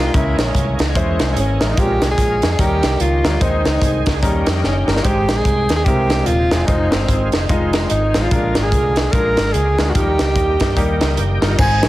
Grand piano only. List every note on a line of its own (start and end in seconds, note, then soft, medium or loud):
0.14 0.75 C#3 medium
0.14 0.70 G#3 medium
0.14 0.71 C#4 medium
0.14 0.71 E4 medium
0.14 0.71 A#4 medium
0.96 1.36 G#3 medium
0.96 1.37 C#4 medium
0.96 1.37 E4 medium
0.96 1.37 C5 medium
1.61 1.72 G#3 medium
1.61 1.72 C#4 medium
1.61 1.72 E4 medium
1.61 1.73 A#4 medium
1.78 2.39 A#2 medium
1.78 2.34 G#3 medium
1.78 1.84 C4 soft
1.78 2.34 F4 medium
1.78 2.35 A#4 medium
1.83 2.37 C#4 medium
2.59 3.21 D#3 medium
2.59 3.00 G3 medium
2.59 3.00 C#4 medium
2.59 3.00 D#4 medium
2.59 3.00 A#4 medium
3.24 3.35 G3 medium
3.24 3.35 C#4 medium
3.24 3.35 D#4 medium
3.24 3.36 A#4 medium
3.41 4.03 D#3 medium
3.41 3.98 G#3 medium
3.41 3.98 C4 medium
3.41 3.98 D#4 medium
3.41 3.98 C5 medium
4.23 4.84 D#3 medium
4.23 4.63 G3 medium
4.23 4.63 C#4 medium
4.23 4.64 D#4 medium
4.23 4.64 A#4 medium
4.88 4.99 G3 medium
4.88 4.99 C#4 medium
4.88 4.99 D#4 medium
4.88 4.99 A#4 medium
5.04 5.66 G#2 medium
5.04 5.61 G#3 medium
5.04 5.61 D#4 medium
5.04 5.61 G4 medium
5.04 5.61 C5 medium
5.87 6.48 C3 medium
5.87 6.27 G#3 medium
5.87 6.27 C4 medium
5.87 6.27 E4 medium
5.87 6.28 A#4 medium
6.52 6.63 G#3 medium
6.52 6.63 C4 medium
6.52 6.63 E4 medium
6.52 6.63 G#4 medium
6.68 7.25 G#3 medium
6.68 7.25 D#4 medium
6.68 7.25 F4 medium
6.68 7.25 C5 medium
7.50 7.90 G#3 medium
7.50 7.90 D#4 medium
7.50 7.91 F4 medium
7.50 7.91 D#5 medium
8.15 8.26 G#3 medium
8.15 8.26 D#4 medium
8.15 8.26 F4 medium
8.15 8.26 C5 medium
8.31 8.93 A#2 medium
8.31 8.88 G#3 medium
8.31 8.88 D4 medium
8.31 8.88 F4 medium
8.31 8.88 A#4 medium
9.14 9.54 G#3 medium
9.14 9.54 D4 medium
9.14 9.54 F4 medium
9.14 9.54 A#4 medium
9.79 9.90 G#3 medium
9.79 9.90 D4 medium
9.79 9.90 F4 medium
9.79 9.90 A#4 medium
9.95 10.56 D#3 medium
9.95 10.01 F3 medium
9.95 10.52 A#3 medium
9.95 10.52 D#4 medium
9.95 10.52 A#4 medium
10.00 10.54 G3 medium
10.77 11.17 G3 medium
10.77 11.17 A#3 medium
10.77 11.17 D#4 medium
10.77 11.18 G4 medium
11.41 11.53 G3 medium
11.41 11.53 A#3 medium
11.41 11.53 D#4 medium
11.41 11.53 F4 medium
11.58 11.88 G#2 medium
11.58 11.88 D#4 medium
11.58 11.88 G#4 medium
11.58 11.88 C5 medium